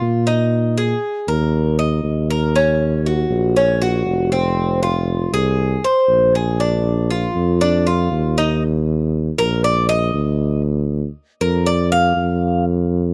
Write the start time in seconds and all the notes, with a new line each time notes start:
Already playing: F4
0.01 A#2
0.27 D#4
0.78 G#4
1.28 D#2 A#4
1.79 D#5
2.04 D#2
2.30 A#4
2.56 C#4
3.06 F#4
3.30 A#1
3.56 C#4
3.82 F#4
4.06 F1
4.32 C4
4.83 F4
5.32 C2 G#4
5.84 C5
6.09 A#1
6.35 G#4
6.60 D4
7.11 F4
7.35 F2
7.61 D4
7.87 F4
8.11 D#2
8.38 D#4
9.38 A#1 A#4
9.64 D5
9.89 D#5
10.14 D2
11.41 F2 A#4
11.66 D5
11.92 F5
12.16 F2